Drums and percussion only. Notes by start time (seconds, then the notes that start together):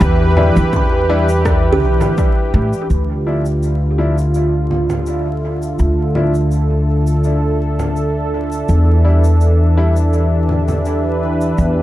0.01 kick, cabasa
0.37 low conga
0.56 cabasa
0.73 kick, low conga, cabasa
1.29 cabasa
1.45 kick, cross-stick, cabasa
2.01 low conga, cabasa
2.18 kick, cabasa
2.73 cabasa
2.90 cabasa
3.45 cabasa
3.63 cabasa
4.18 cabasa
4.34 cabasa
4.71 low conga
4.90 low conga, cabasa
5.06 cabasa
5.62 cabasa
5.79 cabasa
6.15 low conga
6.35 cabasa
6.52 cabasa
7.07 cabasa
7.24 cabasa
7.79 low conga, cabasa
7.96 cabasa
8.52 cabasa
8.68 cabasa
9.24 cabasa
9.41 cabasa
9.96 cabasa
10.13 cabasa
10.49 low conga
10.68 low conga, cabasa
10.85 cabasa
11.41 cabasa
11.58 cabasa